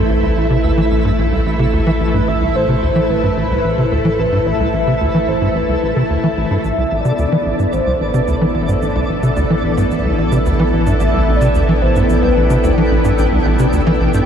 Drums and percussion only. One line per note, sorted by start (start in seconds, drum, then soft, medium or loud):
6.64 shaker soft
6.91 percussion blips soft
7.05 shaker medium
7.18 shaker medium
7.32 percussion blips soft
7.59 shaker medium
7.73 percussion blips soft
7.73 shaker soft
8.14 percussion blips soft
8.14 shaker medium
8.28 shaker soft
8.55 percussion blips soft
8.69 shaker medium
8.82 shaker soft
8.96 percussion blips soft
9.23 shaker medium
9.36 percussion blips soft
9.36 shaker soft
9.78 percussion blips soft
9.78 shaker medium
9.91 shaker medium
10.18 percussion blips soft
10.32 shaker medium
10.46 shaker medium
10.59 percussion blips soft
10.86 shaker medium
11.00 percussion blips soft
11.00 shaker medium
11.41 percussion blips soft
11.41 shaker medium
11.55 shaker medium
11.82 percussion blips soft
11.96 shaker medium
12.09 shaker medium
12.23 percussion blips soft
12.50 shaker medium
12.64 percussion blips soft
12.64 shaker medium
13.05 percussion blips soft
13.05 shaker medium
13.18 shaker medium
13.46 percussion blips soft
13.59 shaker medium
13.73 shaker medium
13.87 percussion blips soft
14.14 shaker medium